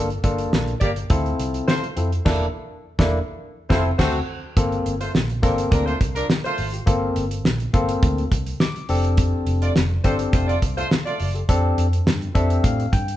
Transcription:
Already playing: fingered electric bass G1
0.10 closed hi-hat
0.23 fingered electric bass G1, tine electric piano A#3 D4 F4 A4, kick, closed hi-hat
0.38 closed hi-hat
0.52 fingered electric bass A#1, snare
0.68 closed hi-hat
0.81 fingered electric bass G1, horn section A#3 G4 D5, kick, closed hi-hat
0.96 closed hi-hat
1.10 fingered electric bass D2, tine electric piano C4 E4 F4 A4, kick, closed hi-hat
1.26 closed hi-hat
1.39 fingered electric bass C2, closed hi-hat
1.54 closed hi-hat
1.68 horn section A3 F4 C5, snare
1.84 closed hi-hat
1.97 fingered electric bass F2, tine electric piano C4 E4 F4 A4, closed hi-hat
2.13 closed hi-hat
2.25 fingered electric bass E1, tine electric piano A#3 D4 E4 A4, kick, snare, crash
2.99 fingered electric bass E1, tine electric piano A#3 D4 E4 A4, kick, snare
3.69 fingered electric bass F1, horn section A3 F4 C5, tine electric piano C4 E4 A4, kick, snare
3.98 fingered electric bass D2, horn section A3 F#4 C5, tine electric piano C4 F#4 A4, kick, snare, crash
4.57 fingered electric bass G1, tine electric piano A#3 C4 F4 A4, kick, closed hi-hat
4.72 closed hi-hat
4.86 fingered electric bass G1, closed hi-hat
5.00 horn section A3 F4 C5, closed hi-hat
5.15 fingered electric bass A#1, snare
5.29 closed hi-hat
5.42 fingered electric bass G1, horn section F3 D4 A#4, tine electric piano A#3 C4 F4 A4, kick, closed hi-hat
5.58 closed hi-hat
5.71 fingered electric bass D2, horn section F3 D4 A#4, kick, closed hi-hat
5.86 horn section A3 F4 C5, closed hi-hat
6.01 fingered electric bass C2, kick, closed hi-hat
6.16 horn section F3 D4 A#4, closed hi-hat
6.30 snare
6.44 horn section A3 F4 C5, closed hi-hat
6.58 fingered electric bass G#1, open hi-hat
6.73 tine electric piano F4 G4, closed hi-hat
6.86 fingered electric bass G1, tine electric piano A#3 C4 F4 A4, kick, closed hi-hat
7.16 fingered electric bass G1, closed hi-hat
7.31 closed hi-hat
7.44 fingered electric bass A#1, snare
7.60 closed hi-hat
7.73 fingered electric bass G1, tine electric piano A#3 C4 F4 A4, kick, closed hi-hat
7.89 closed hi-hat
8.03 fingered electric bass D2, kick, closed hi-hat
8.18 closed hi-hat
8.32 fingered electric bass C2, kick, closed hi-hat
8.47 closed hi-hat
8.60 tine electric piano D6, snare
8.76 closed hi-hat
8.89 fingered electric bass F1, tine electric piano C4 D4 G4 A4, open hi-hat
9.05 closed hi-hat
9.17 kick, closed hi-hat
9.47 fingered electric bass F1, closed hi-hat
9.62 horn section A3 F4 D5, closed hi-hat
9.76 fingered electric bass F1, snare
10.04 fingered electric bass G1, horn section A3 F4 C5, tine electric piano C4 D4 G4 A4, kick, closed hi-hat
10.19 closed hi-hat
10.33 fingered electric bass F1, horn section A3 F4 C5, kick, closed hi-hat
10.48 horn section A3 F4 D5, closed hi-hat
10.62 fingered electric bass C2, kick, closed hi-hat
10.77 horn section A3 F4 C5, closed hi-hat
10.91 snare
11.06 horn section A3 F4 D5, closed hi-hat
11.20 fingered electric bass F#1, open hi-hat
11.34 tine electric piano G4 A4, closed hi-hat
11.49 fingered electric bass F2, tine electric piano C4 D4 G4 A4, kick, closed hi-hat
11.78 fingered electric bass F2, closed hi-hat
11.93 closed hi-hat
12.06 fingered electric bass G2, snare
12.22 closed hi-hat
12.35 fingered electric bass F2, tine electric piano C4 D4 G4 A4 E5, kick, closed hi-hat
12.50 closed hi-hat
12.63 fingered electric bass A2, tine electric piano F5, kick, closed hi-hat
12.80 closed hi-hat
12.93 fingered electric bass G2, tine electric piano G5, kick, closed hi-hat
13.08 closed hi-hat

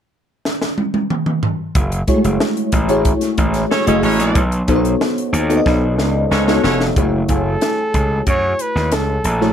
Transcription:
0.45 snare
0.62 snare
0.78 high tom
0.94 high tom
1.10 mid tom
1.26 mid tom
1.43 floor tom
1.75 slap bass F#1, kick, closed hi-hat
1.92 closed hi-hat
2.07 fm electric piano G#3 E4 F#4 G#4 C#5, kick, closed hi-hat
2.14 fm electric piano A3
2.24 slap bass F#1, closed hi-hat
2.40 snare
2.57 closed hi-hat
2.72 slap bass A1, kick, closed hi-hat
2.88 fm electric piano A3 E4 F#4 G#4 C#5, closed hi-hat
3.05 kick, closed hi-hat
3.21 snare, closed hi-hat
3.38 slap bass A1, kick, closed hi-hat
3.54 snare, closed hi-hat
3.71 horn section C#4 A4 C#5, snare
3.86 slap bass F#1, fm electric piano A3 E4 F#4 G#4 D#5, horn section C#4 A4 C#5, closed hi-hat
4.02 slap bass A1, horn section C#4 F#4 A4 C#5, open hi-hat
4.19 slap bass A#1, snare, closed hi-hat
4.35 slap bass B1, kick, closed hi-hat
4.52 closed hi-hat
4.68 slap bass B1, fm electric piano B3 D#4 F#4 A4 C5, kick, closed hi-hat
4.75 fm electric piano C#5
4.85 closed hi-hat
5.01 snare
5.18 closed hi-hat
5.33 slap bass D#2, closed hi-hat
5.49 fm electric piano B3 D#4 F#4 A4 D5, closed hi-hat
5.57 fm electric piano D#5
5.66 slap bass B1, kick, snare
5.98 slap bass C#2, snare
6.31 slap bass C#2, horn section C#4 F#4 A4 C#5, snare
6.47 fm electric piano B3 D#4 F#4 A4 C#5, horn section C#4 F#4 A4 C#5, snare
6.63 slap bass F1, horn section C#4 F#4 A4 C#5, snare
6.81 snare
6.96 slap bass F#1, fm electric piano A3 E4 F#4 G#4 C#5, kick, closed hi-hat
7.29 slap bass F#1, fm electric piano A3 E4 F#4 C#5 G#5, flugelhorn A4, kick, closed hi-hat
7.61 snare, closed hi-hat
7.94 slap bass C#2, kick, closed hi-hat
8.27 slap bass F#2, flugelhorn C#5, kick, closed hi-hat
8.59 flugelhorn B4, closed hi-hat
8.75 slap bass D#2, snare
8.92 slap bass C#2, flugelhorn A4, snare, closed hi-hat
9.24 slap bass A#1, flugelhorn A4, closed hi-hat
9.41 fm electric piano A3 E4 F#4 G#4 C#5, snare

